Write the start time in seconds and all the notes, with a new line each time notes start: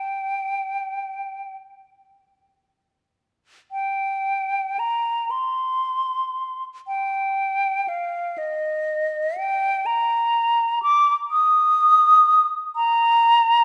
Already playing: G5
3.72 G5
4.79 A#5
5.31 C6
6.87 G5
7.88 F5
8.38 D#5
9.38 G5
9.86 A#5
10.83 D6
11.31 D#6
12.76 A#5